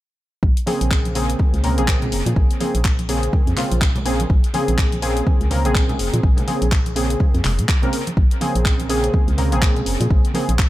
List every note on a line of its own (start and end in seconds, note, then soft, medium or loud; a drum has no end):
0.43 0.53 A#1 medium
0.43 kick loud
0.57 closed hi-hat medium
0.66 1.13 C#3 medium
0.66 1.13 A#3 medium
0.66 1.13 C4 medium
0.66 1.13 G#4 medium
0.66 open hi-hat loud
0.66 high conga medium
0.81 1.35 A#1 medium
0.81 closed hi-hat medium
0.91 kick loud
0.91 clap loud
1.05 closed hi-hat soft
1.05 high conga medium
1.15 1.61 C#3 medium
1.15 1.61 A#3 medium
1.15 1.61 C4 medium
1.15 1.62 G#4 medium
1.15 open hi-hat loud
1.30 closed hi-hat medium
1.39 kick loud
1.39 high conga medium
1.54 1.79 C#2 medium
1.54 closed hi-hat soft
1.63 1.76 C#3 medium
1.63 1.76 A#3 medium
1.63 1.76 C4 medium
1.63 1.76 A#4 medium
1.63 open hi-hat loud
1.63 low conga medium
1.77 2.14 A#1 medium
1.77 2.58 C#3 medium
1.77 2.58 A#3 medium
1.77 2.58 C4 medium
1.77 2.59 G#4 loud
1.77 closed hi-hat medium
1.77 high conga medium
1.88 kick loud
1.88 clap loud
2.02 closed hi-hat soft
2.02 low conga loud
2.12 2.23 F1 loud
2.12 open hi-hat loud
2.26 2.34 A#2 medium
2.26 closed hi-hat medium
2.26 high conga medium
2.36 2.47 A#1 medium
2.36 kick loud
2.51 closed hi-hat soft
2.60 2.78 C#3 medium
2.60 2.78 A#3 medium
2.60 2.79 C4 medium
2.60 2.79 G#4 medium
2.60 open hi-hat loud
2.60 high conga medium
2.75 3.29 A#1 medium
2.75 closed hi-hat medium
2.85 kick loud
2.85 clap loud
2.99 closed hi-hat soft
2.99 high conga medium
3.08 3.55 C#3 medium
3.08 3.55 A#3 medium
3.08 3.55 C4 medium
3.08 3.55 G#4 medium
3.08 open hi-hat loud
3.23 closed hi-hat medium
3.33 kick loud
3.33 high conga medium
3.47 3.55 F2 medium
3.47 closed hi-hat soft
3.57 3.84 C#3 medium
3.57 3.84 A#3 medium
3.57 3.84 C4 medium
3.57 3.85 F4 medium
3.57 clap medium
3.57 open hi-hat loud
3.57 low conga medium
3.71 4.26 A#1 medium
3.71 closed hi-hat medium
3.71 high conga medium
3.81 kick loud
3.81 clap loud
3.96 closed hi-hat soft
3.96 low conga loud
4.05 4.23 C#3 medium
4.05 4.24 A#3 medium
4.05 4.24 C4 medium
4.05 4.24 G#4 loud
4.05 open hi-hat loud
4.20 closed hi-hat medium
4.20 high conga medium
4.30 4.40 A#1 loud
4.30 kick loud
4.44 closed hi-hat soft
4.54 5.00 C#3 medium
4.54 5.00 A#3 medium
4.54 5.00 C4 medium
4.54 5.00 G#4 loud
4.54 open hi-hat loud
4.54 high conga medium
4.68 5.22 A#1 medium
4.68 closed hi-hat medium
4.78 kick loud
4.78 clap loud
4.92 closed hi-hat soft
4.92 high conga medium
5.02 5.48 C#3 medium
5.02 5.48 A#3 medium
5.02 5.49 C4 medium
5.02 5.49 G#4 loud
5.02 open hi-hat loud
5.17 closed hi-hat medium
5.27 kick loud
5.27 high conga medium
5.41 5.67 C#2 medium
5.41 closed hi-hat soft
5.50 5.63 C#3 medium
5.50 5.63 A#3 medium
5.50 5.63 C4 medium
5.50 5.63 A#4 medium
5.50 open hi-hat loud
5.50 low conga medium
5.64 6.01 A#1 medium
5.64 6.45 C#3 medium
5.64 6.45 A#3 medium
5.64 6.45 C4 medium
5.64 6.46 G#4 loud
5.64 closed hi-hat medium
5.64 high conga medium
5.75 kick loud
5.75 clap loud
5.89 closed hi-hat soft
5.89 low conga loud
5.99 6.10 F1 medium
5.99 open hi-hat loud
6.14 6.21 A#2 medium
6.14 closed hi-hat medium
6.14 high conga loud
6.23 6.34 A#1 loud
6.23 kick loud
6.37 closed hi-hat soft
6.37 low conga medium
6.47 6.65 C#3 medium
6.47 6.65 A#3 medium
6.47 6.66 C4 medium
6.47 6.66 G#4 medium
6.47 open hi-hat loud
6.47 high conga medium
6.62 7.16 A#1 medium
6.62 closed hi-hat medium
6.72 kick loud
6.72 clap loud
6.86 closed hi-hat soft
6.86 high conga medium
6.96 7.42 C#3 medium
6.96 7.42 A#3 medium
6.96 7.42 C4 medium
6.96 7.42 G#4 medium
6.96 open hi-hat loud
7.10 closed hi-hat medium
7.20 kick loud
7.20 high conga medium
7.34 7.42 F2 medium
7.34 closed hi-hat soft
7.44 7.60 F1 loud
7.44 clap medium
7.44 open hi-hat loud
7.44 low conga medium
7.59 7.66 A#2 loud
7.59 closed hi-hat medium
7.59 high conga medium
7.69 kick loud
7.69 clap loud
7.82 7.98 C#3 medium
7.82 7.98 A#3 medium
7.82 7.98 C4 medium
7.82 7.98 A#4 loud
7.82 closed hi-hat soft
7.82 low conga loud
7.93 open hi-hat loud
8.07 closed hi-hat medium
8.07 high conga medium
8.17 8.28 A#1 loud
8.17 kick loud
8.31 closed hi-hat soft
8.41 8.87 C#3 medium
8.41 8.87 A#3 medium
8.41 8.87 C4 medium
8.41 8.87 G#4 loud
8.41 open hi-hat loud
8.41 high conga medium
8.55 9.10 A#1 medium
8.55 closed hi-hat medium
8.65 kick loud
8.65 clap loud
8.80 closed hi-hat soft
8.80 high conga medium
8.89 9.35 C#3 medium
8.89 9.36 A#3 medium
8.89 9.36 C4 medium
8.89 9.36 G#4 loud
8.89 open hi-hat loud
9.04 closed hi-hat medium
9.14 kick loud
9.14 high conga medium
9.28 9.54 C#2 medium
9.28 closed hi-hat soft
9.38 9.50 C#3 medium
9.38 9.50 A#3 medium
9.38 9.50 C4 medium
9.38 9.50 A#4 medium
9.38 open hi-hat loud
9.38 low conga medium
9.51 9.88 A#1 medium
9.51 10.32 C#3 medium
9.51 10.32 A#3 medium
9.51 10.32 C4 medium
9.51 10.33 G#4 loud
9.51 closed hi-hat medium
9.51 high conga medium
9.62 kick loud
9.62 clap loud
9.76 closed hi-hat soft
9.76 low conga medium
9.86 9.97 F1 loud
9.86 open hi-hat loud
10.00 10.08 A#2 medium
10.00 closed hi-hat medium
10.00 high conga medium
10.11 10.21 A#1 medium
10.11 kick loud
10.25 closed hi-hat soft
10.34 10.52 C#3 medium
10.34 10.53 A#3 medium
10.34 10.53 C4 medium
10.34 10.53 G#4 medium
10.34 open hi-hat loud
10.34 high conga medium
10.49 10.69 A#1 medium
10.49 closed hi-hat medium
10.59 kick loud
10.59 clap loud